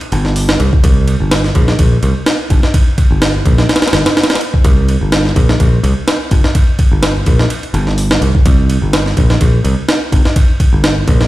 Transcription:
0.01 ride
0.12 G1, ride
0.25 snare
0.36 open hi-hat
0.49 snare
0.60 C2, ride
0.73 kick
0.84 C2, kick, ride
1.08 ride
1.20 G1
1.31 snare, ride
1.44 snare
1.55 A#1, kick, ride
1.68 snare
1.79 A#1, kick, ride
2.03 C2, ride
2.26 snare, ride
2.50 G1, kick, ride
2.63 snare
2.74 kick, ride
2.98 kick, ride
3.11 G1
3.22 snare, ride
3.46 A#1, kick, ride
3.58 snare
3.69 snare, ride
3.76 snare, ride
3.82 snare, ride
3.87 snare, ride
3.93 G1, snare, ride
4.06 snare, ride
4.17 snare, ride
4.23 snare, ride
4.30 snare, ride
4.35 snare, ride
4.41 ride
4.54 kick
4.64 C2, kick, ride
4.88 ride
5.01 G1
5.12 snare, ride
5.25 snare
5.36 A#1, kick, ride
5.49 snare
5.60 A#1, kick, ride
5.83 C2, ride
6.08 snare, ride
6.31 G1, kick, ride
6.44 snare
6.55 kick, ride
6.79 kick, ride
6.92 G1
7.03 snare, ride
7.26 A#1, kick, ride
7.39 snare
7.50 ride
7.63 ride
7.74 G1, ride
7.87 snare
7.98 open hi-hat
8.11 snare
8.21 C2, ride
8.35 kick
8.46 C2, kick, ride
8.70 ride
8.82 G1
8.93 snare, ride
9.06 snare
9.17 A#1, kick, ride
9.30 snare
9.41 A#1, kick, ride
9.64 C2, ride
9.89 snare, ride
10.12 G1, kick, ride
10.25 snare
10.36 kick, ride
10.60 kick, ride
10.73 G1
10.84 snare, ride
11.08 A#1, kick, ride
11.21 snare

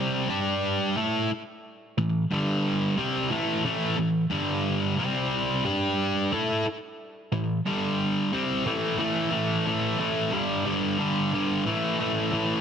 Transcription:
Already playing: C3 G3 C4
0.29 G3 D4 G4
0.97 A3 E4 A4
1.98 A2 E3
2.31 G2 D3 G3
2.97 C3 G3 C4
3.30 A2 E3 A3
3.64 A2 E3 A3
3.98 A2 E3
4.30 G2 D3 G3
4.97 C3 G3 C4
5.65 G3 D4 G4
6.32 A3 E4 A4
7.32 A2 E3
7.66 G2 D3 G3
8.33 C3 G3 C4
8.65 A2 E3 A3
8.98 A2 E3 A3
9.31 A2 E3 A3
9.66 A2 E3 A3
9.98 A2 E3 A3
10.32 G2 D3 G3
10.66 G2 D3 G3
10.98 G2 D3 G3
11.33 G2 D3 G3
11.66 A2 E3 A3
11.99 A2 E3 A3
12.32 A2 E3 A3

